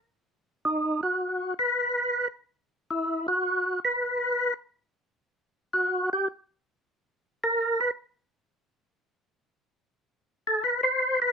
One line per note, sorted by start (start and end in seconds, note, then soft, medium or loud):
0.65 1.01 D#4 medium
1.03 1.54 F#4 medium
1.59 2.28 B4 medium
2.91 3.27 E4 medium
3.28 3.80 F#4 medium
3.85 4.54 B4 medium
5.73 6.10 F#4 medium
6.13 6.28 G4 medium
7.44 7.80 A#4 medium
7.81 7.91 B4 medium
10.47 10.63 A4 medium
10.64 10.81 B4 medium
10.83 11.20 C5 loud
11.22 11.32 B4 loud